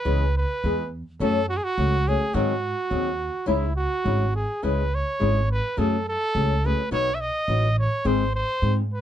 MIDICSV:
0, 0, Header, 1, 4, 480
1, 0, Start_track
1, 0, Key_signature, 4, "minor"
1, 0, Tempo, 571429
1, 48, Time_signature, 2, 2, 24, 8
1, 7568, End_track
2, 0, Start_track
2, 0, Title_t, "Trumpet"
2, 0, Program_c, 0, 56
2, 0, Note_on_c, 0, 71, 81
2, 310, Note_off_c, 0, 71, 0
2, 313, Note_on_c, 0, 71, 81
2, 760, Note_off_c, 0, 71, 0
2, 1020, Note_on_c, 0, 69, 88
2, 1246, Note_off_c, 0, 69, 0
2, 1251, Note_on_c, 0, 66, 97
2, 1319, Note_on_c, 0, 68, 78
2, 1331, Note_off_c, 0, 66, 0
2, 1377, Note_on_c, 0, 66, 95
2, 1390, Note_off_c, 0, 68, 0
2, 1747, Note_on_c, 0, 68, 89
2, 1760, Note_off_c, 0, 66, 0
2, 1967, Note_on_c, 0, 66, 80
2, 1980, Note_off_c, 0, 68, 0
2, 2920, Note_off_c, 0, 66, 0
2, 2924, Note_on_c, 0, 64, 64
2, 3156, Note_off_c, 0, 64, 0
2, 3161, Note_on_c, 0, 66, 87
2, 3622, Note_off_c, 0, 66, 0
2, 3659, Note_on_c, 0, 68, 63
2, 3894, Note_on_c, 0, 71, 71
2, 3907, Note_off_c, 0, 68, 0
2, 4154, Note_on_c, 0, 73, 89
2, 4167, Note_off_c, 0, 71, 0
2, 4625, Note_off_c, 0, 73, 0
2, 4630, Note_on_c, 0, 71, 79
2, 4859, Note_on_c, 0, 69, 70
2, 4871, Note_off_c, 0, 71, 0
2, 5106, Note_off_c, 0, 69, 0
2, 5111, Note_on_c, 0, 69, 97
2, 5593, Note_on_c, 0, 71, 77
2, 5606, Note_off_c, 0, 69, 0
2, 5809, Note_off_c, 0, 71, 0
2, 5814, Note_on_c, 0, 73, 96
2, 6003, Note_on_c, 0, 76, 67
2, 6015, Note_off_c, 0, 73, 0
2, 6054, Note_on_c, 0, 75, 97
2, 6066, Note_off_c, 0, 76, 0
2, 6533, Note_off_c, 0, 75, 0
2, 6541, Note_on_c, 0, 73, 83
2, 6772, Note_on_c, 0, 72, 81
2, 6785, Note_off_c, 0, 73, 0
2, 7008, Note_off_c, 0, 72, 0
2, 7013, Note_on_c, 0, 72, 94
2, 7369, Note_off_c, 0, 72, 0
2, 7503, Note_on_c, 0, 71, 68
2, 7568, Note_off_c, 0, 71, 0
2, 7568, End_track
3, 0, Start_track
3, 0, Title_t, "Nylon-string guitar"
3, 0, Program_c, 1, 24
3, 41, Note_on_c, 1, 49, 63
3, 43, Note_on_c, 1, 52, 68
3, 46, Note_on_c, 1, 56, 80
3, 46, Note_on_c, 1, 59, 65
3, 49, Note_on_c, 1, 68, 71
3, 197, Note_off_c, 1, 49, 0
3, 198, Note_off_c, 1, 52, 0
3, 200, Note_off_c, 1, 56, 0
3, 200, Note_off_c, 1, 59, 0
3, 201, Note_off_c, 1, 68, 0
3, 535, Note_on_c, 1, 52, 57
3, 542, Note_on_c, 1, 59, 63
3, 545, Note_on_c, 1, 56, 60
3, 551, Note_on_c, 1, 68, 58
3, 687, Note_off_c, 1, 52, 0
3, 691, Note_off_c, 1, 59, 0
3, 692, Note_off_c, 1, 56, 0
3, 695, Note_off_c, 1, 68, 0
3, 1010, Note_on_c, 1, 49, 69
3, 1011, Note_on_c, 1, 42, 85
3, 1016, Note_on_c, 1, 54, 77
3, 1017, Note_on_c, 1, 61, 86
3, 1019, Note_on_c, 1, 66, 80
3, 1021, Note_on_c, 1, 57, 82
3, 1163, Note_off_c, 1, 49, 0
3, 1164, Note_off_c, 1, 42, 0
3, 1166, Note_off_c, 1, 54, 0
3, 1166, Note_off_c, 1, 61, 0
3, 1168, Note_off_c, 1, 57, 0
3, 1168, Note_off_c, 1, 66, 0
3, 1495, Note_on_c, 1, 54, 64
3, 1497, Note_on_c, 1, 57, 63
3, 1506, Note_on_c, 1, 61, 61
3, 1509, Note_on_c, 1, 66, 63
3, 1643, Note_off_c, 1, 54, 0
3, 1644, Note_off_c, 1, 57, 0
3, 1649, Note_off_c, 1, 61, 0
3, 1650, Note_off_c, 1, 66, 0
3, 1741, Note_on_c, 1, 54, 54
3, 1748, Note_on_c, 1, 57, 53
3, 1752, Note_on_c, 1, 61, 59
3, 1754, Note_on_c, 1, 66, 59
3, 1878, Note_off_c, 1, 54, 0
3, 1881, Note_off_c, 1, 57, 0
3, 1883, Note_off_c, 1, 61, 0
3, 1884, Note_off_c, 1, 66, 0
3, 1959, Note_on_c, 1, 44, 83
3, 1966, Note_on_c, 1, 51, 81
3, 1967, Note_on_c, 1, 60, 78
3, 1968, Note_on_c, 1, 54, 82
3, 1968, Note_on_c, 1, 68, 88
3, 1973, Note_on_c, 1, 63, 88
3, 2111, Note_off_c, 1, 44, 0
3, 2114, Note_off_c, 1, 51, 0
3, 2115, Note_off_c, 1, 54, 0
3, 2115, Note_off_c, 1, 60, 0
3, 2115, Note_off_c, 1, 68, 0
3, 2118, Note_off_c, 1, 63, 0
3, 2438, Note_on_c, 1, 54, 53
3, 2441, Note_on_c, 1, 60, 67
3, 2447, Note_on_c, 1, 63, 62
3, 2450, Note_on_c, 1, 68, 65
3, 2588, Note_off_c, 1, 54, 0
3, 2589, Note_off_c, 1, 60, 0
3, 2592, Note_off_c, 1, 63, 0
3, 2594, Note_off_c, 1, 68, 0
3, 2906, Note_on_c, 1, 49, 84
3, 2907, Note_on_c, 1, 56, 76
3, 2911, Note_on_c, 1, 61, 82
3, 2917, Note_on_c, 1, 63, 83
3, 2918, Note_on_c, 1, 64, 83
3, 3064, Note_off_c, 1, 49, 0
3, 3064, Note_off_c, 1, 56, 0
3, 3066, Note_off_c, 1, 61, 0
3, 3070, Note_off_c, 1, 63, 0
3, 3070, Note_off_c, 1, 64, 0
3, 3394, Note_on_c, 1, 56, 60
3, 3399, Note_on_c, 1, 61, 54
3, 3407, Note_on_c, 1, 63, 60
3, 3408, Note_on_c, 1, 64, 64
3, 3553, Note_off_c, 1, 56, 0
3, 3555, Note_off_c, 1, 61, 0
3, 3560, Note_off_c, 1, 63, 0
3, 3560, Note_off_c, 1, 64, 0
3, 3885, Note_on_c, 1, 49, 62
3, 3889, Note_on_c, 1, 56, 69
3, 3891, Note_on_c, 1, 64, 81
3, 3894, Note_on_c, 1, 61, 78
3, 3895, Note_on_c, 1, 68, 70
3, 4042, Note_off_c, 1, 49, 0
3, 4044, Note_off_c, 1, 56, 0
3, 4045, Note_off_c, 1, 64, 0
3, 4046, Note_off_c, 1, 61, 0
3, 4047, Note_off_c, 1, 68, 0
3, 4364, Note_on_c, 1, 56, 60
3, 4367, Note_on_c, 1, 64, 59
3, 4368, Note_on_c, 1, 61, 50
3, 4374, Note_on_c, 1, 68, 52
3, 4522, Note_off_c, 1, 56, 0
3, 4524, Note_off_c, 1, 61, 0
3, 4524, Note_off_c, 1, 64, 0
3, 4527, Note_off_c, 1, 68, 0
3, 4846, Note_on_c, 1, 42, 77
3, 4849, Note_on_c, 1, 49, 72
3, 4851, Note_on_c, 1, 54, 73
3, 4851, Note_on_c, 1, 61, 79
3, 4852, Note_on_c, 1, 57, 71
3, 4858, Note_on_c, 1, 68, 69
3, 5002, Note_off_c, 1, 42, 0
3, 5004, Note_off_c, 1, 49, 0
3, 5005, Note_off_c, 1, 54, 0
3, 5005, Note_off_c, 1, 57, 0
3, 5005, Note_off_c, 1, 61, 0
3, 5008, Note_off_c, 1, 68, 0
3, 5328, Note_on_c, 1, 54, 50
3, 5330, Note_on_c, 1, 57, 55
3, 5335, Note_on_c, 1, 61, 58
3, 5338, Note_on_c, 1, 68, 62
3, 5480, Note_off_c, 1, 54, 0
3, 5480, Note_off_c, 1, 57, 0
3, 5483, Note_off_c, 1, 61, 0
3, 5485, Note_off_c, 1, 68, 0
3, 5577, Note_on_c, 1, 54, 52
3, 5582, Note_on_c, 1, 57, 65
3, 5584, Note_on_c, 1, 61, 52
3, 5589, Note_on_c, 1, 68, 60
3, 5717, Note_off_c, 1, 54, 0
3, 5719, Note_off_c, 1, 57, 0
3, 5721, Note_off_c, 1, 61, 0
3, 5723, Note_off_c, 1, 68, 0
3, 5805, Note_on_c, 1, 47, 72
3, 5807, Note_on_c, 1, 59, 76
3, 5811, Note_on_c, 1, 54, 75
3, 5811, Note_on_c, 1, 63, 81
3, 5814, Note_on_c, 1, 66, 88
3, 5957, Note_off_c, 1, 47, 0
3, 5958, Note_off_c, 1, 59, 0
3, 5960, Note_off_c, 1, 54, 0
3, 5960, Note_off_c, 1, 63, 0
3, 5961, Note_off_c, 1, 66, 0
3, 6282, Note_on_c, 1, 54, 53
3, 6290, Note_on_c, 1, 59, 57
3, 6295, Note_on_c, 1, 63, 62
3, 6298, Note_on_c, 1, 66, 62
3, 6434, Note_off_c, 1, 54, 0
3, 6438, Note_off_c, 1, 59, 0
3, 6440, Note_off_c, 1, 63, 0
3, 6442, Note_off_c, 1, 66, 0
3, 6758, Note_on_c, 1, 44, 75
3, 6759, Note_on_c, 1, 51, 80
3, 6762, Note_on_c, 1, 60, 90
3, 6765, Note_on_c, 1, 56, 75
3, 6765, Note_on_c, 1, 68, 83
3, 6767, Note_on_c, 1, 63, 67
3, 6909, Note_off_c, 1, 44, 0
3, 6910, Note_off_c, 1, 51, 0
3, 6911, Note_off_c, 1, 60, 0
3, 6913, Note_off_c, 1, 56, 0
3, 6913, Note_off_c, 1, 68, 0
3, 6914, Note_off_c, 1, 63, 0
3, 7240, Note_on_c, 1, 56, 49
3, 7245, Note_on_c, 1, 60, 55
3, 7248, Note_on_c, 1, 63, 54
3, 7253, Note_on_c, 1, 68, 54
3, 7391, Note_off_c, 1, 56, 0
3, 7393, Note_off_c, 1, 60, 0
3, 7394, Note_off_c, 1, 63, 0
3, 7397, Note_off_c, 1, 68, 0
3, 7568, End_track
4, 0, Start_track
4, 0, Title_t, "Upright bass"
4, 0, Program_c, 2, 32
4, 45, Note_on_c, 2, 37, 86
4, 364, Note_off_c, 2, 37, 0
4, 535, Note_on_c, 2, 40, 84
4, 849, Note_off_c, 2, 40, 0
4, 1010, Note_on_c, 2, 42, 80
4, 1323, Note_off_c, 2, 42, 0
4, 1493, Note_on_c, 2, 37, 96
4, 1801, Note_off_c, 2, 37, 0
4, 1969, Note_on_c, 2, 44, 77
4, 2276, Note_off_c, 2, 44, 0
4, 2445, Note_on_c, 2, 39, 87
4, 2755, Note_off_c, 2, 39, 0
4, 2923, Note_on_c, 2, 37, 70
4, 3238, Note_off_c, 2, 37, 0
4, 3407, Note_on_c, 2, 32, 91
4, 3724, Note_off_c, 2, 32, 0
4, 3895, Note_on_c, 2, 37, 69
4, 4210, Note_off_c, 2, 37, 0
4, 4380, Note_on_c, 2, 32, 89
4, 4693, Note_off_c, 2, 32, 0
4, 4854, Note_on_c, 2, 42, 73
4, 5165, Note_off_c, 2, 42, 0
4, 5333, Note_on_c, 2, 37, 92
4, 5643, Note_off_c, 2, 37, 0
4, 5808, Note_on_c, 2, 35, 73
4, 6119, Note_off_c, 2, 35, 0
4, 6284, Note_on_c, 2, 33, 91
4, 6594, Note_off_c, 2, 33, 0
4, 6762, Note_on_c, 2, 32, 71
4, 7073, Note_off_c, 2, 32, 0
4, 7242, Note_on_c, 2, 44, 81
4, 7558, Note_off_c, 2, 44, 0
4, 7568, End_track
0, 0, End_of_file